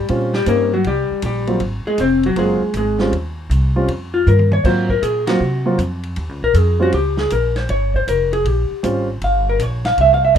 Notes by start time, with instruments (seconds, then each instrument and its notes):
0.08 upright bass A#2, grand piano G3 C4 C#4 F4, ride
0.34 hollow-body jazz guitar G3 G4, snare
0.46 upright bass G2, grand piano G3 C4 C#4 D#4, hollow-body jazz guitar A#3 A#4, hi-hat pedal, ride
0.74 hollow-body jazz guitar F#3 F#4
0.84 upright bass C2, hollow-body jazz guitar G3 G4, ride
1.11 muted upright bass stroke
1.22 upright bass A#1, hollow-body jazz guitar G3 G4, hi-hat pedal, ride
1.47 grand piano F#3 A#3 C4 F4, ride
1.60 upright bass G#1, ride
1.85 hollow-body jazz guitar G#3 G#4, muted upright bass stroke
1.98 upright bass F1, hollow-body jazz guitar C4 C5, hi-hat pedal, ride
2.23 hollow-body jazz guitar F#3 F#4, ride
2.36 upright bass F#1, grand piano F#3 A#3 C4 F4, hollow-body jazz guitar G#3 G#4, ride
2.61 muted upright bass stroke
2.74 upright bass G#1, hollow-body jazz guitar G#4, hi-hat pedal, ride
2.78 hollow-body jazz guitar G#3
2.99 grand piano G3 C4 C#4 F4, snare
3.12 upright bass D#2, ride
3.50 upright bass C2, hi-hat pedal, ride
3.76 grand piano G3 C4 C#4 F4
3.88 upright bass F2, ride
4.14 hollow-body jazz guitar F4
4.27 upright bass G2, hollow-body jazz guitar A#4, hi-hat pedal, high tom
4.39 high tom
4.51 hollow-body jazz guitar C#5, high tom
4.64 upright bass G#2, grand piano F#3 A#3 C4 F4, hollow-body jazz guitar C5, kick, crash
4.89 hollow-body jazz guitar A#4, kick
5.02 upright bass A#2, hollow-body jazz guitar G#4, hi-hat pedal, ride
5.27 grand piano F#3 A#3 C4 F4, hollow-body jazz guitar F#4, snare, ride
5.40 upright bass C3
5.65 grand piano F#3 A#3 C4 F4
5.78 upright bass F2, hi-hat pedal, ride
6.03 ride
6.16 upright bass D#2, ride
6.29 upright bass C#2
6.42 upright bass A#1, hollow-body jazz guitar A#4
6.54 upright bass F2, hollow-body jazz guitar G#4, hi-hat pedal, ride
6.79 grand piano G3 C4 C#4 F4, hollow-body jazz guitar F#4
6.92 upright bass C#2, hollow-body jazz guitar G4, ride
7.17 hollow-body jazz guitar G#4, snare
7.30 upright bass A#1, hollow-body jazz guitar A#4, hi-hat pedal, ride
7.56 hollow-body jazz guitar C5, snare, ride
7.69 upright bass G1, hollow-body jazz guitar C#5, ride
7.94 hollow-body jazz guitar C5, kick
8.07 upright bass F1, hollow-body jazz guitar A#4, hi-hat pedal, ride
8.33 hollow-body jazz guitar G#4, ride
8.45 upright bass A#1, hollow-body jazz guitar G4, ride
8.71 muted upright bass stroke
8.83 upright bass G#1, grand piano G3 C4 C#4 F4, hi-hat pedal, ride
9.21 upright bass G1, hollow-body jazz guitar F5, ride
9.49 hollow-body jazz guitar A#4
9.59 upright bass A#1, hollow-body jazz guitar C#5, hi-hat pedal, ride
9.85 hollow-body jazz guitar F5, snare, ride
9.97 upright bass C2, hollow-body jazz guitar E5, ride
10.14 hollow-body jazz guitar F5
10.25 hollow-body jazz guitar E5
10.35 upright bass E2